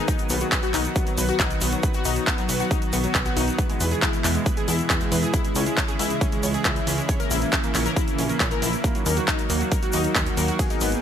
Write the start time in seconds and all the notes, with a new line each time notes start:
0.08 D#3 F#3 B3 D#4 F#4, kick, closed hi-hat, shaker
0.18 closed hi-hat, shaker
0.29 B1 D#3 F#3 B3 F#4, open hi-hat, shaker
0.40 F#3, closed hi-hat, shaker
0.52 D#3 F#3 B3 F#4 B4, kick, clap, closed hi-hat, shaker
0.63 F#4, closed hi-hat, shaker
0.74 B1 D#3 F#3 B3 D#4 F#4, clap, open hi-hat, shaker
0.85 closed hi-hat, shaker
0.96 D#3 F#3 B3 F#4, kick, closed hi-hat, shaker
1.07 D#3 F#3 B3 F#4, closed hi-hat, shaker
1.18 B1 B4, open hi-hat, shaker
1.29 D#3 F#3 B3 F#4, closed hi-hat, shaker
1.40 B1 D#4, kick, clap, closed hi-hat, shaker
1.50 D#3 F#3 B3 F#4, closed hi-hat, shaker
1.61 B1 B3, open hi-hat, shaker
1.72 D#3 F#3 B3 F#4, closed hi-hat, shaker
1.83 D#3 F#3 B3 F#4 B4, kick, closed hi-hat, shaker
1.94 F#4, closed hi-hat, shaker
2.05 B1 D#3 F#3 B3 D#4 F#4, open hi-hat, shaker
2.16 closed hi-hat, shaker
2.27 D#3 F#3 B3 F#4, kick, clap, closed hi-hat, shaker
2.38 F#3, closed hi-hat, shaker
2.49 B1 D#3 F#3 B3 F#4 B4, open hi-hat, shaker
2.60 F#4, closed hi-hat, shaker
2.71 D#3 F#3 B3 D#4 F#4, kick, closed hi-hat, shaker
2.82 D#3 F#3 B3 F#4, closed hi-hat, shaker
2.93 B1 B3, open hi-hat, shaker
3.04 D#3 F#3 B3 F#4, closed hi-hat, shaker
3.15 B1 B4, kick, clap, closed hi-hat, shaker
3.25 D#3 F#3 B3 F#4, closed hi-hat, shaker
3.37 B1 D#4, open hi-hat, shaker
3.47 D#3 F#3 B3 F#4, closed hi-hat, shaker
3.58 B2 E3 G#3 B3 E4, kick, closed hi-hat, shaker
3.70 G#3, closed hi-hat, shaker
3.80 E2 B2 E3 G#3 E4 B4, open hi-hat, shaker
3.91 G#4, closed hi-hat, shaker
4.02 B2 E3 G#3 E4, kick, clap, closed hi-hat, shaker
4.13 closed hi-hat, shaker
4.24 E2 B2 E3 G#3 B3 E4, clap, open hi-hat, shaker
4.35 G#3, closed hi-hat, shaker
4.46 B2 E3 G#3 E4 B4, kick, closed hi-hat, shaker
4.57 B2 E3 G#3 E4 G#4, closed hi-hat, shaker
4.68 E2 E4, open hi-hat, shaker
4.79 B2 E3 G#3 E4, closed hi-hat, shaker
4.90 E2 B3, kick, clap, closed hi-hat, shaker
5.01 B2 E3 G#3 E4, closed hi-hat, shaker
5.12 E2 B4, open hi-hat, shaker
5.22 B2 E3 G#3 E4 G#4, shaker
5.33 C#3 E3 G#3 E4, kick, closed hi-hat, shaker
5.45 closed hi-hat, shaker
5.55 C#2 C#3 E3 G#3 C#4 E4, open hi-hat, shaker
5.66 G#3, closed hi-hat, shaker
5.77 C#3 E3 G#3 E4 C#5, kick, clap, closed hi-hat, shaker
5.88 G#4, closed hi-hat, shaker
5.99 C#2 C#3 E3 G#3 E4, open hi-hat, shaker
6.10 closed hi-hat, shaker
6.21 C#3 E3 G#3 C#4 E4, kick, closed hi-hat, shaker
6.32 C#3 E3 G#3 E4, closed hi-hat, shaker
6.43 C#2 C#5, open hi-hat, shaker
6.54 C#3 E3 G#3 E4 G#4, closed hi-hat, shaker
6.65 C#2 E4, kick, clap, closed hi-hat, shaker
6.76 C#3 E3 G#3 E4, closed hi-hat, shaker
6.87 C#2 C#4, open hi-hat, shaker
6.98 C#3 E3 G#3 E4, closed hi-hat, shaker
7.09 C#3 E3 A#3 E4 C#5, kick, closed hi-hat, shaker
7.20 A#4, closed hi-hat, shaker
7.31 A#1 C#3 E3 A#3 E4, open hi-hat, shaker
7.42 closed hi-hat, shaker
7.52 C#3 E3 A#3 C#4 E4, kick, clap, closed hi-hat, shaker
7.63 A#3, closed hi-hat, shaker
7.74 A#1 C#3 E3 A#3 E4 C#5, clap, open hi-hat, shaker
7.86 A#4, closed hi-hat, shaker
7.96 C#3 E3 A#3 E4, kick, closed hi-hat, shaker
8.07 C#3 E3 A#3 E4, closed hi-hat, shaker
8.18 A#1 C#4, open hi-hat, shaker
8.29 C#3 E3 A#3 E4, closed hi-hat, shaker
8.40 A#1 C#5, kick, clap, closed hi-hat, shaker
8.51 C#3 E3 A#3 E4 A#4, closed hi-hat, shaker
8.62 A#1 E4, open hi-hat, shaker
8.73 C#3 E3 A#3 E4, closed hi-hat, shaker
8.84 D#3 F#3 A#3 F#4, kick, closed hi-hat, shaker
8.95 F#3, closed hi-hat, shaker
9.06 D#2 D#3 F#3 A#3 F#4 A#4, open hi-hat, shaker
9.17 F#4, closed hi-hat, shaker
9.28 D#3 F#3 A#3 D#4 F#4, kick, clap, closed hi-hat, shaker
9.39 closed hi-hat, shaker
9.50 D#2 D#3 F#3 A#3 F#4, open hi-hat, shaker
9.61 F#3, closed hi-hat, shaker
9.72 D#3 F#3 A#3 F#4 A#4, kick, closed hi-hat, shaker
9.83 D#3 F#3 A#3 F#4, closed hi-hat, shaker
9.93 D#2 D#4, open hi-hat, shaker
10.04 D#3 F#3 A#3 F#4, closed hi-hat, shaker
10.15 D#2 A#3, kick, clap, closed hi-hat, shaker
10.26 D#3 F#3 A#3 F#4, closed hi-hat, shaker
10.37 D#2 A#4, open hi-hat, shaker
10.48 D#3 F#3 A#3 F#4, closed hi-hat, shaker
10.59 D#3 A#3 B3 G#4, kick, closed hi-hat, ride, shaker
10.70 D#4, closed hi-hat, shaker
10.81 G#1 D#3 A#3 B3 G#4, open hi-hat, shaker
10.92 closed hi-hat, shaker